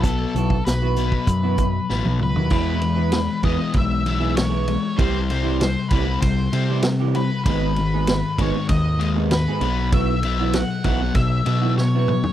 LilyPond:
<<
  \new Staff \with { instrumentName = "Lead electric guitar" } { \time 4/4 \key e \major \tempo 4 = 97 a'4 b'2~ b'8 b'8 | b'4. dis''8 e''8 e''8 cis''4 | c''4 c''8 b'8 c''4 r8 b'8 | b'4. cis''8 dis''8 dis''8 b'4 |
e''4 fis''8 fis''8 e''4 cis''4 | }
  \new Staff \with { instrumentName = "Clean electric guitar" } { \time 4/4 \key e \major r8 <e b e' fis'>16 r8 <e b e' fis'>16 r8. <e b e' fis'>16 r4 r16 <e b e' fis'>16 | <e b e' gis'>16 r8 <e b e' gis'>16 r8 <e b e' gis'>16 r4 <e b e' gis'>16 r16 <e b e' gis'>16 r8 | <e g e' g'>16 r8 <e g e' g'>16 r8 <e g e' g'>16 r4 <e g e' g'>16 r16 <e g e' g'>16 r8 | <gis b dis' gis'>16 r8 <gis b dis' gis'>16 r8 <gis b dis' gis'>16 r4 <gis b dis' gis'>16 r16 <gis b dis' gis'>16 r8 |
<e b e' fis'>16 r8 <e b e' fis'>16 r8 <e b e' fis'>16 r4 <e b e' fis'>16 r16 <e b e' fis'>16 r8 | }
  \new Staff \with { instrumentName = "Overdriven electric guitar" } { \clef bass \time 4/4 \key e \major <b, fis b>8 <b, fis>8 <b, fis>8 <b, fis b>8 <b, fis>8 <b, fis>8 <b, fis b>8 <b, fis>8 | <e gis b>8 <e gis>8 <e gis>8 <e gis b>8 <e gis>8 <e gis b>8 <e gis>8 <e gis>8 | <c g c'>8 <c g c'>8 <c g>8 <c g c'>8 <c g>8 <c g c'>8 <c g>8 <c g>8 | <gis, dis gis>8 <gis, dis>8 <gis, dis>8 <gis, dis gis>8 <gis, dis>8 <gis, dis gis>8 <gis, dis>8 <b, fis b>8 |
<b, fis>8 <b, fis b>8 <b, fis>8 <b, fis b>8 <b, fis>8 <b, fis b>8 <b, fis>8 <b, fis>8 | }
  \new Staff \with { instrumentName = "Picked electric bass" } { \clef bass \time 4/4 \key e \major b,,8 b,,8 b,,4 fis,4 a,,16 b,,16 cis,16 dis,16 | e,4. e,16 r16 b,,2 | c,4. c,8 c,8 c4. | gis,,4. gis,,16 r16 dis,4. b,,8~ |
b,,4. b,,8 b,,8 b,4. | }
  \new DrumStaff \with { instrumentName = "Drums" } \drummode { \time 4/4 <hh bd>8 hh16 bd16 <hh sn>8 hh16 bd16 <hh bd>8 <hh bd>8 sn16 tommh16 toml16 tomfh16 | <cymc bd>8 cymr8 <cymr sn>8 <bd cymr>8 <bd cymr>8 cymr8 <cymr sn>8 cymr8 | <bd cymr>8 cymr8 <cymr sn>8 <bd cymr>8 <bd cymr>8 cymr8 <cymr sn>8 cymr8 | <bd cymr>8 cymr8 <cymr sn>8 <bd cymr>8 <bd cymr>8 cymr8 <cymr sn>8 cymr8 |
<bd cymr>8 cymr8 <cymr sn>8 <bd cymr>8 <bd cymr>8 cymr8 sn8 toml16 tomfh16 | }
>>